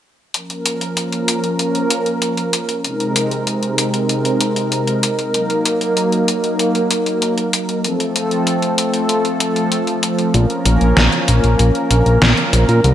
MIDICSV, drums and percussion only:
0, 0, Header, 1, 2, 480
1, 0, Start_track
1, 0, Key_signature, -5, "minor"
1, 0, Tempo, 625000
1, 263, Time_signature, 4, 2, 24, 8
1, 9940, End_track
2, 0, Start_track
2, 0, Title_t, "Drums"
2, 263, Note_on_c, 9, 42, 61
2, 340, Note_off_c, 9, 42, 0
2, 384, Note_on_c, 9, 42, 36
2, 460, Note_off_c, 9, 42, 0
2, 504, Note_on_c, 9, 42, 87
2, 580, Note_off_c, 9, 42, 0
2, 624, Note_on_c, 9, 42, 37
2, 701, Note_off_c, 9, 42, 0
2, 744, Note_on_c, 9, 42, 63
2, 821, Note_off_c, 9, 42, 0
2, 864, Note_on_c, 9, 42, 38
2, 941, Note_off_c, 9, 42, 0
2, 984, Note_on_c, 9, 42, 88
2, 1060, Note_off_c, 9, 42, 0
2, 1103, Note_on_c, 9, 42, 38
2, 1180, Note_off_c, 9, 42, 0
2, 1223, Note_on_c, 9, 42, 62
2, 1300, Note_off_c, 9, 42, 0
2, 1344, Note_on_c, 9, 42, 37
2, 1420, Note_off_c, 9, 42, 0
2, 1463, Note_on_c, 9, 42, 86
2, 1539, Note_off_c, 9, 42, 0
2, 1583, Note_on_c, 9, 42, 38
2, 1660, Note_off_c, 9, 42, 0
2, 1703, Note_on_c, 9, 42, 62
2, 1780, Note_off_c, 9, 42, 0
2, 1824, Note_on_c, 9, 42, 37
2, 1900, Note_off_c, 9, 42, 0
2, 1944, Note_on_c, 9, 42, 89
2, 2021, Note_off_c, 9, 42, 0
2, 2064, Note_on_c, 9, 42, 37
2, 2141, Note_off_c, 9, 42, 0
2, 2185, Note_on_c, 9, 42, 62
2, 2262, Note_off_c, 9, 42, 0
2, 2305, Note_on_c, 9, 42, 37
2, 2382, Note_off_c, 9, 42, 0
2, 2425, Note_on_c, 9, 42, 88
2, 2502, Note_off_c, 9, 42, 0
2, 2545, Note_on_c, 9, 42, 38
2, 2622, Note_off_c, 9, 42, 0
2, 2665, Note_on_c, 9, 42, 64
2, 2742, Note_off_c, 9, 42, 0
2, 2785, Note_on_c, 9, 42, 39
2, 2862, Note_off_c, 9, 42, 0
2, 2904, Note_on_c, 9, 42, 88
2, 2981, Note_off_c, 9, 42, 0
2, 3024, Note_on_c, 9, 42, 39
2, 3101, Note_off_c, 9, 42, 0
2, 3144, Note_on_c, 9, 42, 65
2, 3221, Note_off_c, 9, 42, 0
2, 3265, Note_on_c, 9, 42, 38
2, 3341, Note_off_c, 9, 42, 0
2, 3383, Note_on_c, 9, 42, 85
2, 3460, Note_off_c, 9, 42, 0
2, 3505, Note_on_c, 9, 42, 39
2, 3581, Note_off_c, 9, 42, 0
2, 3624, Note_on_c, 9, 42, 62
2, 3700, Note_off_c, 9, 42, 0
2, 3744, Note_on_c, 9, 42, 38
2, 3821, Note_off_c, 9, 42, 0
2, 3864, Note_on_c, 9, 42, 89
2, 3941, Note_off_c, 9, 42, 0
2, 3984, Note_on_c, 9, 42, 37
2, 4060, Note_off_c, 9, 42, 0
2, 4104, Note_on_c, 9, 42, 61
2, 4180, Note_off_c, 9, 42, 0
2, 4223, Note_on_c, 9, 42, 36
2, 4300, Note_off_c, 9, 42, 0
2, 4343, Note_on_c, 9, 42, 86
2, 4420, Note_off_c, 9, 42, 0
2, 4463, Note_on_c, 9, 42, 35
2, 4540, Note_off_c, 9, 42, 0
2, 4583, Note_on_c, 9, 42, 60
2, 4660, Note_off_c, 9, 42, 0
2, 4703, Note_on_c, 9, 42, 39
2, 4780, Note_off_c, 9, 42, 0
2, 4824, Note_on_c, 9, 42, 84
2, 4901, Note_off_c, 9, 42, 0
2, 4944, Note_on_c, 9, 42, 38
2, 5021, Note_off_c, 9, 42, 0
2, 5064, Note_on_c, 9, 42, 62
2, 5141, Note_off_c, 9, 42, 0
2, 5184, Note_on_c, 9, 42, 37
2, 5261, Note_off_c, 9, 42, 0
2, 5304, Note_on_c, 9, 42, 85
2, 5381, Note_off_c, 9, 42, 0
2, 5425, Note_on_c, 9, 42, 37
2, 5502, Note_off_c, 9, 42, 0
2, 5545, Note_on_c, 9, 42, 61
2, 5621, Note_off_c, 9, 42, 0
2, 5665, Note_on_c, 9, 42, 37
2, 5742, Note_off_c, 9, 42, 0
2, 5785, Note_on_c, 9, 42, 86
2, 5862, Note_off_c, 9, 42, 0
2, 5905, Note_on_c, 9, 42, 36
2, 5981, Note_off_c, 9, 42, 0
2, 6025, Note_on_c, 9, 42, 59
2, 6102, Note_off_c, 9, 42, 0
2, 6145, Note_on_c, 9, 42, 35
2, 6222, Note_off_c, 9, 42, 0
2, 6265, Note_on_c, 9, 42, 84
2, 6341, Note_off_c, 9, 42, 0
2, 6384, Note_on_c, 9, 42, 36
2, 6461, Note_off_c, 9, 42, 0
2, 6504, Note_on_c, 9, 42, 59
2, 6580, Note_off_c, 9, 42, 0
2, 6624, Note_on_c, 9, 42, 36
2, 6700, Note_off_c, 9, 42, 0
2, 6744, Note_on_c, 9, 42, 81
2, 6820, Note_off_c, 9, 42, 0
2, 6863, Note_on_c, 9, 42, 36
2, 6940, Note_off_c, 9, 42, 0
2, 6982, Note_on_c, 9, 42, 61
2, 7059, Note_off_c, 9, 42, 0
2, 7103, Note_on_c, 9, 42, 35
2, 7180, Note_off_c, 9, 42, 0
2, 7222, Note_on_c, 9, 42, 83
2, 7299, Note_off_c, 9, 42, 0
2, 7343, Note_on_c, 9, 42, 36
2, 7420, Note_off_c, 9, 42, 0
2, 7463, Note_on_c, 9, 42, 59
2, 7539, Note_off_c, 9, 42, 0
2, 7582, Note_on_c, 9, 42, 35
2, 7659, Note_off_c, 9, 42, 0
2, 7702, Note_on_c, 9, 42, 83
2, 7779, Note_off_c, 9, 42, 0
2, 7822, Note_on_c, 9, 42, 34
2, 7899, Note_off_c, 9, 42, 0
2, 7943, Note_on_c, 9, 42, 57
2, 8020, Note_off_c, 9, 42, 0
2, 8063, Note_on_c, 9, 42, 35
2, 8140, Note_off_c, 9, 42, 0
2, 8183, Note_on_c, 9, 42, 78
2, 8260, Note_off_c, 9, 42, 0
2, 8303, Note_on_c, 9, 42, 34
2, 8379, Note_off_c, 9, 42, 0
2, 8423, Note_on_c, 9, 38, 106
2, 8423, Note_on_c, 9, 42, 57
2, 8500, Note_off_c, 9, 38, 0
2, 8500, Note_off_c, 9, 42, 0
2, 8544, Note_on_c, 9, 42, 35
2, 8620, Note_off_c, 9, 42, 0
2, 8663, Note_on_c, 9, 42, 82
2, 8740, Note_off_c, 9, 42, 0
2, 8784, Note_on_c, 9, 42, 36
2, 8860, Note_off_c, 9, 42, 0
2, 8903, Note_on_c, 9, 42, 58
2, 8980, Note_off_c, 9, 42, 0
2, 9024, Note_on_c, 9, 42, 36
2, 9101, Note_off_c, 9, 42, 0
2, 9144, Note_on_c, 9, 42, 80
2, 9221, Note_off_c, 9, 42, 0
2, 9264, Note_on_c, 9, 42, 36
2, 9340, Note_off_c, 9, 42, 0
2, 9383, Note_on_c, 9, 38, 109
2, 9383, Note_on_c, 9, 42, 57
2, 9460, Note_off_c, 9, 38, 0
2, 9460, Note_off_c, 9, 42, 0
2, 9504, Note_on_c, 9, 42, 35
2, 9580, Note_off_c, 9, 42, 0
2, 9624, Note_on_c, 9, 42, 82
2, 9701, Note_off_c, 9, 42, 0
2, 9744, Note_on_c, 9, 42, 35
2, 9821, Note_off_c, 9, 42, 0
2, 9864, Note_on_c, 9, 42, 57
2, 9940, Note_off_c, 9, 42, 0
2, 9940, End_track
0, 0, End_of_file